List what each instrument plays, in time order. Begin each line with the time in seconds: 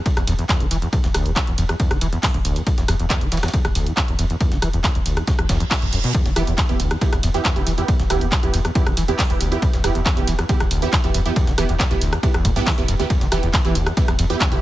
0.06 acid bass E2, kick, closed hi-hat, ride
0.17 sub bass E1, acid bass E2, cross-stick, closed hi-hat, ride
0.27 sub bass E1, acid bass E2, open hi-hat, ride
0.39 acid bass E2, closed hi-hat
0.49 acid bass E2, kick, snare, clap, closed hi-hat, ride
0.60 sub bass E1, acid bass E3, closed hi-hat
0.71 sub bass E1, acid bass E3, open hi-hat, ride
0.82 acid bass E2, closed hi-hat
0.93 acid bass E2, kick, closed hi-hat, ride
1.04 sub bass E1, acid bass D2, snare, closed hi-hat
1.14 sub bass E1, acid bass D2, cross-stick, open hi-hat, ride
1.26 sub bass E1, acid bass E2, closed hi-hat
1.36 acid bass E2, kick, snare, clap, closed hi-hat, ride
1.47 sub bass E1, acid bass E2, closed hi-hat
1.58 sub bass E1, acid bass E2, open hi-hat, ride
1.69 acid bass E2, cross-stick, closed hi-hat
1.80 acid bass E2, kick, closed hi-hat, ride
1.91 sub bass E1, acid bass E3, cross-stick, closed hi-hat
2.01 sub bass E1, acid bass E3, open hi-hat, ride
2.13 acid bass E2, closed hi-hat
2.23 acid bass E2, kick, snare, clap, closed hi-hat, open hi-hat
2.34 sub bass E1, acid bass D2, closed hi-hat
2.45 sub bass E1, acid bass D2, open hi-hat, ride
2.56 acid bass E2, closed hi-hat, ride
2.67 acid bass E2, kick, closed hi-hat, ride
2.78 sub bass E1, acid bass E2, snare, closed hi-hat
2.88 sub bass E1, acid bass E2, cross-stick, open hi-hat, ride
3.00 sub bass E1, acid bass E2, closed hi-hat
3.10 acid bass E2, kick, snare, clap, closed hi-hat, ride
3.21 sub bass E1, acid bass E3, closed hi-hat
3.32 sub bass E1, acid bass E3, snare, open hi-hat, ride
3.37 snare, ride
3.43 acid bass E2, cross-stick, snare, closed hi-hat, ride
3.48 snare, ride
3.54 acid bass E2, kick, closed hi-hat, ride
3.65 sub bass E1, acid bass D2, cross-stick, closed hi-hat, ride
3.75 sub bass E1, acid bass D2, open hi-hat, ride
3.86 acid bass E2, closed hi-hat
3.97 acid bass E2, kick, snare, clap, closed hi-hat, ride
4.08 sub bass E1, acid bass E2, closed hi-hat
4.19 sub bass E1, acid bass E2, open hi-hat, ride
4.30 acid bass E2, closed hi-hat
4.40 acid bass E2, kick, closed hi-hat, ride
4.52 sub bass E1, acid bass E3, snare, closed hi-hat
4.62 sub bass E1, acid bass E3, cross-stick, open hi-hat, ride
4.73 sub bass E1, acid bass E2, closed hi-hat
4.84 acid bass E2, kick, snare, clap, closed hi-hat, ride
4.95 sub bass E1, acid bass D2, closed hi-hat
5.06 sub bass E1, acid bass D2, open hi-hat, ride
5.17 acid bass E2, cross-stick, closed hi-hat
5.27 acid bass E2, kick, snare, closed hi-hat, ride, reverse cymbal
5.39 sub bass E1, acid bass E2, cross-stick, closed hi-hat
5.49 sub bass E1, acid bass E2, kick, snare, open hi-hat, ride
5.60 acid bass E2, closed hi-hat
5.71 acid bass E2, kick, snare, clap, closed hi-hat, open hi-hat
5.82 sub bass E1, acid bass E2, closed hi-hat
5.93 sub bass E1, acid bass F#2, open hi-hat, ride
6.04 acid bass B2, closed hi-hat
6.14 acid bass E2, kick, closed hi-hat, ride
6.26 sub bass E1, acid bass E3, snare, closed hi-hat
6.36 sub bass E1, acid bass E3, synth stab B3 E4 G4, cross-stick, open hi-hat, ride
6.47 sub bass E1, acid bass E2, closed hi-hat
6.58 acid bass E2, kick, snare, clap, closed hi-hat, ride
6.69 sub bass E1, acid bass D2, synth stab B3 E4 G4, closed hi-hat
6.80 sub bass E1, acid bass D2, open hi-hat, ride
6.91 acid bass E2, cross-stick, closed hi-hat
7.01 acid bass E2, synth stab B3 E4 G4, kick, closed hi-hat, ride
7.13 sub bass E1, acid bass E2, cross-stick, closed hi-hat, ride
7.23 sub bass E1, acid bass E2, open hi-hat, ride
7.34 acid bass E2, synth stab B3 E4 G4, closed hi-hat
7.45 acid bass E2, kick, snare, clap, closed hi-hat, ride
7.56 sub bass E1, acid bass E3, synth stab B3 E4 G4, closed hi-hat
7.67 sub bass E1, acid bass E3, open hi-hat, ride
7.78 acid bass E2, synth stab B3 E4 G4, closed hi-hat
7.88 acid bass E2, kick, closed hi-hat, ride
8.00 sub bass E1, acid bass D2, snare, closed hi-hat
8.10 sub bass E1, acid bass D2, synth stab B3 E4 G4, cross-stick, open hi-hat, ride
8.21 sub bass E1, acid bass E2, closed hi-hat
8.32 acid bass E2, kick, snare, clap, closed hi-hat, ride
8.43 sub bass E1, acid bass E2, synth stab B3 E4 G4, closed hi-hat
8.54 sub bass E1, acid bass E2, open hi-hat, ride
8.65 acid bass E2, cross-stick, closed hi-hat
8.75 acid bass E2, synth stab B3 E4 G4, kick, closed hi-hat, ride
8.87 sub bass E1, acid bass E3, cross-stick, closed hi-hat
8.97 sub bass E1, acid bass E3, open hi-hat, ride
9.08 acid bass E2, synth stab B3 E4 G4, closed hi-hat
9.19 acid bass E2, kick, snare, clap, closed hi-hat, open hi-hat
9.30 sub bass E1, acid bass D2, synth stab B3 E4 G4, closed hi-hat
9.40 sub bass E1, acid bass D2, open hi-hat, ride
9.52 acid bass E2, synth stab B3 E4 G4, closed hi-hat, ride
9.62 acid bass E2, kick, closed hi-hat, ride
9.73 sub bass E1, acid bass E2, snare, closed hi-hat
9.84 sub bass E1, acid bass E2, synth stab B3 E4 G4, cross-stick, open hi-hat, ride
9.95 sub bass E1, acid bass E2, closed hi-hat
10.06 acid bass E2, kick, snare, clap, closed hi-hat, ride
10.17 sub bass E1, acid bass E3, synth stab B3 E4 G4, closed hi-hat
10.27 sub bass E1, acid bass E3, open hi-hat, ride
10.39 acid bass E2, cross-stick, closed hi-hat
10.49 acid bass E2, synth stab B3 E4 G4, kick, closed hi-hat, ride
10.60 sub bass E1, acid bass D2, cross-stick, closed hi-hat, ride
10.71 sub bass E1, acid bass D2, open hi-hat, ride
10.82 acid bass E2, synth stab B3 E4 G4, closed hi-hat
10.93 acid bass E2, kick, snare, clap, closed hi-hat, ride
11.04 sub bass E1, acid bass E2, synth stab B3 E4 G4, closed hi-hat
11.14 sub bass E1, acid bass E2, open hi-hat, ride
11.26 acid bass E2, synth stab B3 E4 G4, closed hi-hat
11.36 acid bass E2, kick, closed hi-hat, ride
11.47 sub bass E1, acid bass E3, snare, closed hi-hat
11.58 sub bass E1, acid bass E3, synth stab B3 E4 G4, cross-stick, open hi-hat, ride
11.69 sub bass E1, acid bass E2, closed hi-hat
11.80 acid bass E2, kick, snare, clap, closed hi-hat, ride
11.91 sub bass E1, acid bass D2, synth stab B3 E4 G4, closed hi-hat
12.01 sub bass E1, acid bass D2, open hi-hat, ride
12.13 acid bass E2, cross-stick, closed hi-hat
12.23 acid bass E2, synth stab B3 E4 G4, kick, closed hi-hat, ride
12.34 sub bass E1, acid bass E2, cross-stick, closed hi-hat
12.45 sub bass E1, acid bass B2, kick, open hi-hat, ride
12.56 acid bass G2, synth stab B3 E4 G4, closed hi-hat
12.67 acid bass E3, kick, snare, clap, closed hi-hat, open hi-hat
12.78 sub bass E1, acid bass E2, synth stab B3 E4 G4, closed hi-hat
12.88 sub bass E1, acid bass F#2, open hi-hat, ride
12.99 acid bass D2, synth stab B3 E4 G4, closed hi-hat, ride
13.10 acid bass E2, kick, closed hi-hat, ride
13.21 sub bass E1, acid bass E3, snare, closed hi-hat
13.32 sub bass E1, acid bass E3, synth stab B3 E4 G4, cross-stick, open hi-hat, ride
13.43 sub bass E1, acid bass E2, closed hi-hat
13.54 acid bass E2, kick, snare, clap, closed hi-hat, ride
13.65 sub bass E1, acid bass E3, synth stab B3 E4 G4, closed hi-hat
13.75 sub bass E1, acid bass D2, open hi-hat, ride
13.86 acid bass E2, cross-stick, closed hi-hat
13.97 acid bass E2, synth stab B3 E4 G4, kick, closed hi-hat, ride
14.08 sub bass E1, acid bass E2, cross-stick, closed hi-hat, ride
14.19 sub bass E1, acid bass E2, open hi-hat, ride
14.30 acid bass E2, synth stab B3 E4 G4, closed hi-hat
14.40 acid bass E2, kick, snare, clap, closed hi-hat, ride
14.52 sub bass E1, acid bass E3, synth stab B3 E4 G4, closed hi-hat